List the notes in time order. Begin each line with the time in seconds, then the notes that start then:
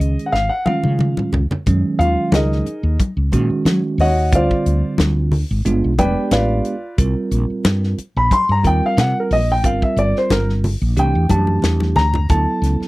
Already playing: D#3 G#3 C#4 G#4 D#5
0.00 C#2, closed hi-hat
0.19 closed hi-hat
0.26 F#5
0.32 G#1 F5, snare, muted conga
0.49 F#5
0.66 D#3 G#3 C#4 F4 F5, muted fretless electric bass stroke, high tom, muted conga, high conga
0.84 C#3, high conga
0.99 mid tom, high conga
1.17 mid tom, high conga
1.33 C#2, floor tom, low conga
1.50 muted fretless electric bass stroke, floor tom, low conga
1.66 F#2 D#3 F#3 G#3 C#4, kick, closed hi-hat, muted conga
1.99 D#2 F4 F5, closed hi-hat
2.17 muted fretless electric bass stroke
2.32 C#2 D#4 G#4 A#4 D#5, snare, closed hi-hat, high conga
2.52 snare
2.66 muted fretless electric bass stroke, closed hi-hat, muted conga
2.83 D#2
3.00 kick, closed hi-hat, muted conga, high conga
3.17 C#2
3.32 A#2 D#3 G#3 C#4 F#4, kick, closed hi-hat, muted conga
3.50 muted fretless electric bass stroke
3.65 F#3, snare, closed hi-hat, high conga
3.98 D#2 F#4 C#5 D#5 F#5, open hi-hat
4.32 D2 D3 G3 C4 F4 C5 D5 F5, kick, closed hi-hat, muted conga
4.36 F4
4.51 kick
4.66 D2, closed hi-hat
4.98 D2, snare, closed hi-hat, high conga
5.32 open hi-hat, muted conga, low conga
5.51 G#1
5.65 G1 G#3 B3 D4 F4, closed hi-hat, muted conga
5.84 B1
5.98 F1 G#3 B3 D4 G4 B4 D5 G5, kick, closed hi-hat, muted conga, high conga
6.31 A1 F4 B4 D5 F5, snare, closed hi-hat, high conga
6.65 closed hi-hat
6.98 C2 G3 C4 F4 A#4, kick, closed hi-hat, muted conga
7.31 A#1, closed hi-hat
7.50 muted fretless electric bass stroke
7.64 G2, snare, closed hi-hat, high conga
7.83 snare
7.98 muted fretless electric bass stroke, closed hi-hat, muted conga
8.16 A#1 B5
8.31 C6, kick, closed hi-hat, muted conga, high conga
8.49 G2 A#5
8.64 D#2 G3 C4 F4 A#4 G5, kick, closed hi-hat, muted conga
8.83 F5, muted fretless electric bass stroke
8.97 C3 F#5, snare, closed hi-hat, high conga
9.20 A#4
9.31 A#1 D#5, open hi-hat
9.52 G5
9.64 G1 G3 C4 F4 A#4 F5, kick, closed hi-hat, muted conga
9.82 E5, kick
9.97 G1 D5, closed hi-hat
10.16 C5, snare
10.30 G1 A#4, snare, closed hi-hat, high conga
10.49 snare
10.64 open hi-hat, muted conga, low conga
10.82 A#1
10.96 C2 E3 A3 D4 G4 G5, closed hi-hat, muted conga
11.15 E2
11.29 F#2 E3 A3 D4 G4 A5, kick, closed hi-hat, muted conga, high conga
11.47 high conga
11.62 E2, snare, closed hi-hat, high conga
11.80 snare, high conga
11.96 D2 A#5, snare, low conga
12.14 floor tom, low conga
12.29 D2 F#3 B3 E4 A4 A5, kick, closed hi-hat, muted conga
12.62 C#2, snare, closed hi-hat
12.80 muted fretless electric bass stroke, snare